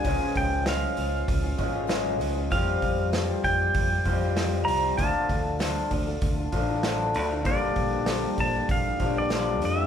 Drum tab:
HH |oooooooo|oooooooo|oooooooo|oooooooo|
SD |--o---o-|--o---o-|--o---o-|--o---o-|
BD |oo--oo--|oo-ooo--|oo-ooo--|oo-ooo--|